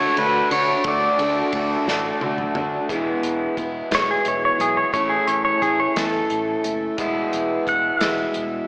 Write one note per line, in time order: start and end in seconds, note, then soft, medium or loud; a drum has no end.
0.00 0.15 D3 medium
0.00 0.16 D3 medium
0.00 0.17 A3 medium
0.00 0.17 D4 medium
0.00 0.17 F#4 medium
0.00 0.15 C#5 medium
0.17 0.40 D2 medium
0.17 0.51 D3 medium
0.17 0.51 A3 medium
0.17 0.51 D4 medium
0.17 0.49 F#4 medium
0.17 0.52 B4 medium
0.17 ride medium
0.51 0.73 D3 medium
0.51 0.84 A3 soft
0.51 0.85 D4 soft
0.51 0.85 F#4 medium
0.51 0.87 C#5 loud
0.51 ride medium
0.84 1.07 D2 medium
0.84 1.19 D3 medium
0.84 1.19 A3 medium
0.84 1.19 D4 medium
0.84 1.17 F#4 medium
0.84 2.53 D5 loud
0.84 kick loud
0.84 ride medium
1.18 1.41 D2 medium
1.18 1.53 A3 medium
1.18 1.53 D4 medium
1.18 1.53 F#4 medium
1.18 ride medium
1.53 1.76 D2 medium
1.53 1.87 D3 medium
1.53 1.87 A3 medium
1.53 1.87 D4 medium
1.53 1.86 F#4 medium
1.53 kick medium
1.53 ride medium
1.87 2.10 A1 medium
1.87 2.20 D3 medium
1.87 2.21 A3 medium
1.87 2.21 D4 medium
1.87 2.21 F#4 medium
1.87 snare medium
2.21 2.44 D3 medium
2.21 2.55 D3 medium
2.21 2.56 A3 medium
2.21 2.55 D4 medium
2.21 2.54 F#4 medium
2.21 high tom medium
2.38 mid tom medium
2.55 2.78 D3 medium
2.55 2.89 A3 soft
2.55 2.90 D4 medium
2.55 2.89 F#4 medium
2.55 mid tom medium
2.89 3.13 E1 medium
2.89 3.57 E2 medium
2.89 3.57 B2 medium
2.89 3.56 E3 medium
2.89 3.56 G#3 medium
2.89 3.57 B3 medium
2.89 3.59 E4 medium
2.89 kick medium
2.89 closed hi-hat medium
3.23 3.46 E1 medium
3.23 closed hi-hat medium
3.57 3.80 E1 medium
3.57 3.91 E3 medium
3.57 3.91 G#3 medium
3.57 3.90 B3 medium
3.57 3.90 E4 medium
3.57 kick medium
3.57 closed hi-hat medium
3.91 4.14 E1 medium
3.91 4.60 E2 medium
3.91 4.60 B2 medium
3.91 4.60 E3 medium
3.91 4.59 G#3 medium
3.91 4.58 B3 medium
3.91 4.58 E4 medium
3.91 4.10 C#5 medium
3.91 snare loud
3.91 closed hi-hat medium
4.11 4.26 G#4 medium
4.25 4.49 E1 medium
4.25 4.43 C#5 medium
4.25 closed hi-hat medium
4.45 4.60 C#5 medium
4.58 4.83 B1 medium
4.58 4.91 E3 soft
4.58 4.92 G#3 soft
4.58 4.93 B3 soft
4.58 4.93 E4 medium
4.58 4.77 G#4 medium
4.58 closed hi-hat medium
4.77 4.92 C#5 medium
4.92 5.17 A1 medium
4.92 5.61 A2 medium
4.92 5.60 E3 medium
4.92 5.61 A3 medium
4.92 5.61 C#4 medium
4.92 5.63 E4 medium
4.92 5.10 C#5 loud
4.92 kick loud
4.92 closed hi-hat medium
5.09 5.27 G#4 medium
5.27 5.51 A1 medium
5.27 5.43 C#5 medium
5.27 closed hi-hat medium
5.45 5.61 C#5 medium
5.61 5.85 A1 medium
5.61 5.95 E3 medium
5.61 5.96 A3 medium
5.61 5.96 C#4 medium
5.61 5.95 E4 medium
5.61 5.78 G#4 medium
5.61 kick medium
5.61 closed hi-hat medium
5.80 5.96 C#5 medium
5.96 6.19 E2 medium
5.96 6.65 A2 medium
5.96 6.65 E3 medium
5.96 6.64 A3 medium
5.96 6.63 C#4 medium
5.96 6.62 E4 medium
5.96 6.96 A4 medium
5.96 snare loud
5.96 closed hi-hat medium
6.30 6.54 A1 medium
6.30 closed hi-hat medium
6.63 6.88 F#1 medium
6.63 6.98 A3 soft
6.63 6.98 C#4 soft
6.63 6.98 E4 medium
6.63 closed hi-hat medium
6.98 7.22 E1 medium
6.98 7.66 E2 medium
6.98 7.67 B2 medium
6.98 7.65 E3 medium
6.98 7.66 G#3 medium
6.98 7.67 B3 medium
6.98 7.67 E4 medium
6.98 kick loud
6.98 closed hi-hat medium
7.33 7.57 E1 medium
7.33 closed hi-hat medium
7.66 7.90 E1 medium
7.66 8.00 E3 medium
7.66 8.00 G#3 medium
7.66 7.99 B3 medium
7.66 7.99 E4 medium
7.66 8.02 F#5 medium
7.66 kick medium
7.66 closed hi-hat medium
8.00 8.25 E1 medium
8.00 8.67 E2 medium
8.00 8.67 B2 medium
8.00 8.67 E3 medium
8.00 8.67 G#3 medium
8.00 8.67 B3 medium
8.00 8.67 E4 medium
8.00 8.67 E5 medium
8.00 snare loud
8.00 closed hi-hat medium
8.34 8.59 E1 medium
8.34 closed hi-hat medium